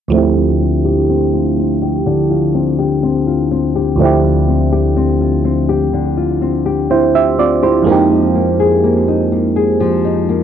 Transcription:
0.08 fm electric piano D2 F3 A3
0.13 nylon-string guitar D3, fm electric piano C4 E4
0.18 fm electric piano G4
0.37 nylon-string guitar F4
0.61 nylon-string guitar C4
0.85 nylon-string guitar G4
1.09 nylon-string guitar C4
1.33 nylon-string guitar F4
1.58 nylon-string guitar C4
1.82 nylon-string guitar G4
2.06 nylon-string guitar D3
2.30 nylon-string guitar F4
2.55 nylon-string guitar C4
2.79 nylon-string guitar G4
3.03 nylon-string guitar C4
3.27 nylon-string guitar F4
3.51 nylon-string guitar C4
3.76 nylon-string guitar G4
3.96 fm electric piano D2 F3 A3
4.00 nylon-string guitar D3, fm electric piano C4 E4
4.05 fm electric piano G4
4.24 nylon-string guitar F4
4.48 nylon-string guitar C4
4.72 nylon-string guitar G4
4.97 nylon-string guitar C4
5.21 nylon-string guitar F4
5.45 nylon-string guitar C4
5.69 nylon-string guitar G4
5.93 nylon-string guitar D3
6.17 nylon-string guitar F4
6.42 nylon-string guitar C4
6.66 nylon-string guitar G4
6.90 nylon-string guitar C4, fm electric piano E4 C5
7.14 nylon-string guitar F4, fm electric piano G4 E5
7.38 nylon-string guitar C4, fm electric piano F4 D5
7.63 fm electric piano E4 C5, nylon-string guitar G4
7.83 fm electric piano F2 G#3 A#3
7.87 nylon-string guitar F3, fm electric piano C4 D#4
7.92 fm electric piano G4
8.11 nylon-string guitar D#4
8.35 nylon-string guitar A#3
8.60 nylon-string guitar G#4
8.84 nylon-string guitar A#3
9.08 nylon-string guitar D#4
9.32 nylon-string guitar A#3
9.56 nylon-string guitar G#4
9.80 nylon-string guitar F3
10.05 nylon-string guitar D#4
10.29 nylon-string guitar A#3

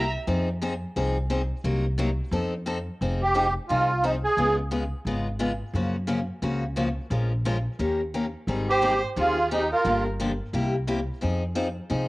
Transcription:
Already playing: upright bass C2, violin E5, accordion A#5
0.27 upright bass F2, steel-string acoustic guitar F3 C4 D#4 G#4
0.61 steel-string acoustic guitar F3 C4 D#4 G#4
0.96 upright bass C2, steel-string acoustic guitar F3 C4 D#4 G#4
1.30 steel-string acoustic guitar F3 C4 D#4 G#4
1.64 upright bass C2, steel-string acoustic guitar C3 F#3 A#3 D#4 A#4
1.98 steel-string acoustic guitar C3 F#3 A#3 D#4 A#4
2.31 upright bass F2, steel-string acoustic guitar F3 C4 D#4 A4
2.66 steel-string acoustic guitar F3 C4 D#4 A4
3.01 upright bass F1, steel-string acoustic guitar F3 C4 D#4 G#4
3.22 accordion G4
3.34 steel-string acoustic guitar F3 C4 D#4 G#4
3.68 upright bass C2, steel-string acoustic guitar F3 C4 D#4 G#4, accordion F4
4.03 steel-string acoustic guitar F3 C4 D#4 G#4, accordion D#4
4.24 accordion G#4
4.37 upright bass C#2, steel-string acoustic guitar C#3 G#3 B3 F4 G#4
4.71 steel-string acoustic guitar C#3 G#3 B3 F4 G#4
5.05 upright bass G#1, steel-string acoustic guitar C#3 G#3 B3 F4 G#4
5.39 steel-string acoustic guitar C#3 G#3 B3 F4 G#4
5.73 upright bass F#2, steel-string acoustic guitar C#3 F3 A#3 C#4 F#4
6.07 steel-string acoustic guitar C#3 F3 A#3 C#4 F#4
6.42 upright bass C#2, steel-string acoustic guitar C#3 F3 A#3 C#4 F#4
6.76 steel-string acoustic guitar C#3 F3 A#3 C#4 F#4
7.10 upright bass A#1, steel-string acoustic guitar F3 G#3 C#4 F4 A#4
7.45 steel-string acoustic guitar F3 G#3 C#4 F4 A#4
7.79 upright bass D#2, steel-string acoustic guitar D#3 A#3 C#4 G4 A#4
8.14 steel-string acoustic guitar D#3 A#3 C#4 G4 A#4
8.47 upright bass G#1, steel-string acoustic guitar D#3 G3 C4 D#4 G#4
8.70 accordion G4, violin C5
8.82 steel-string acoustic guitar D#3 G3 C4 D#4 G#4
9.16 upright bass D#2, steel-string acoustic guitar D#3 G3 C4 D#4 G#4, accordion F4, violin G#4
9.51 steel-string acoustic guitar D#3 G3 C4 D#4 G#4, accordion D#4, violin G4
9.71 accordion F4, violin A#4
9.84 upright bass G1, steel-string acoustic guitar D3 F3 A#3 D4 G4
10.20 steel-string acoustic guitar D3 F3 A#3 D4 G4
10.53 upright bass C2, steel-string acoustic guitar C3 G3 A#3 E4 G4
10.87 steel-string acoustic guitar C3 G3 A#3 E4 G4
11.21 upright bass F2, steel-string acoustic guitar F3 C4 D#4 G#4
11.55 steel-string acoustic guitar F3 C4 D#4 G#4
11.90 upright bass C2, steel-string acoustic guitar F3 C4 D#4 G#4

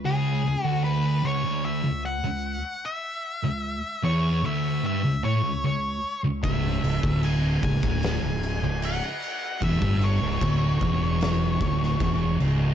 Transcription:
0.04 distorted electric guitar C#2, lead electric guitar G#4
0.44 distorted electric guitar C#2
0.64 distorted electric guitar D2, lead electric guitar F#4
0.84 lead electric guitar B4
1.25 distorted electric guitar C#2, lead electric guitar C#5
1.45 distorted electric guitar D2
1.65 lead electric guitar E5
1.85 distorted electric guitar C#2
2.05 lead electric guitar F#5
2.25 distorted electric guitar C#2
2.86 lead electric guitar E5
3.44 distorted electric guitar C#2
4.03 distorted electric guitar E2, lead electric guitar C#5
4.44 distorted electric guitar D2, lead electric guitar E5
4.84 distorted electric guitar G2, lead electric guitar E5
5.05 distorted electric guitar C#2
5.24 distorted electric guitar A2, lead electric guitar C#5
5.44 distorted electric guitar C#2
5.64 distorted electric guitar C#2, lead electric guitar C#5
6.24 distorted electric guitar C#2
6.43 fingered electric bass C#1, distorted electric guitar C#2, lead electric guitar E5, kick, crash
6.83 fingered electric bass C#1, distorted electric guitar C#2, crash
7.03 fingered electric bass D1, distorted electric guitar D2, kick
7.23 lead electric guitar G#5, crash
7.62 fingered electric bass C#1, distorted electric guitar C#2, lead electric guitar G#5, kick, crash
7.82 fingered electric bass D1, distorted electric guitar D2, kick
8.03 snare, crash
8.22 fingered electric bass C#1, distorted electric guitar C#2
8.43 crash
8.63 fingered electric bass C#1, distorted electric guitar C#2
8.82 lead electric guitar F#5, crash
9.22 crash
9.62 fingered electric bass E1, distorted electric guitar E2, lead electric guitar E5, kick, crash
9.82 fingered electric bass G1, distorted electric guitar G2, kick
10.02 lead electric guitar C#5, crash
10.22 fingered electric bass C#1, distorted electric guitar C#2
10.41 fingered electric bass D1, distorted electric guitar D2, kick, crash
10.81 fingered electric bass E1, distorted electric guitar E2, kick, crash
11.21 snare, crash
11.60 fingered electric bass D1, distorted electric guitar D2, kick, crash
11.83 snare
12.00 fingered electric bass E1, distorted electric guitar E2, kick, crash
12.40 fingered electric bass C#1, distorted electric guitar C#2, crash

